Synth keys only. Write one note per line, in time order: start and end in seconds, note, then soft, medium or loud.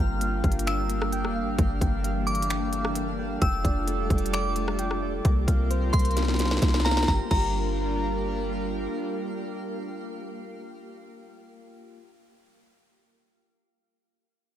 0.00 0.65 F5 medium
0.00 1.11 G5 loud
0.21 0.88 A#3 medium
0.66 1.34 F5 loud
0.89 1.57 A#3 medium
1.13 1.80 G5 loud
1.36 2.03 F5 medium
1.58 2.25 A#3 loud
1.81 2.49 G5 medium
2.04 3.42 F5 loud
2.26 2.95 A#3 medium
2.50 3.18 G5 loud
2.96 3.42 A#3 medium
3.19 3.41 G5 medium
3.42 4.78 G5 loud
3.64 4.32 D5 medium
3.88 4.55 A3 medium
4.33 5.01 D5 loud
4.57 5.25 A3 medium
4.79 5.25 G5 loud
5.02 5.25 D5 medium
5.26 5.93 A#3 loud
5.47 6.15 F5 loud
5.70 7.08 C5 medium
5.94 6.61 A#3 medium
6.16 6.84 F5 loud
6.63 7.01 A#3 medium
6.86 7.08 F5 medium
7.02 7.18 A#3 medium
7.08 7.21 F4 medium
7.14 7.24 G4 medium
7.25 11.98 A#3 medium
7.31 12.04 F4 medium
7.37 12.10 G4 loud